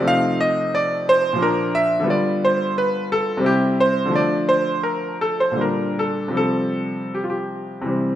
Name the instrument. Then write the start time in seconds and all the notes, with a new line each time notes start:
grand piano
Already playing: C3
0.01 F3 A3
0.05 D#4 F5
0.41 D#5
0.75 D5
1.09 C5
1.33 A#2 F3
1.38 A#3 D4
1.42 A#4
1.75 E5
2.00 D3 G3
2.04 B3 F4
2.10 D5
2.45 C5
2.78 B4
3.12 A4
3.37 C3 G3 C4
3.44 E4 G4
3.80 C5
4.05 D3 F3
4.11 A3 D4
4.16 D5
4.49 C5
4.83 A#4
5.21 A4
5.40 C5
5.51 A#2 D3
5.57 G3 D4
5.61 A#4
5.99 A4
6.28 C3 F3
6.33 G3 C4
6.37 A4
7.14 G4
7.24 F4
7.30 G4
7.82 C3 E3
7.86 G3 C4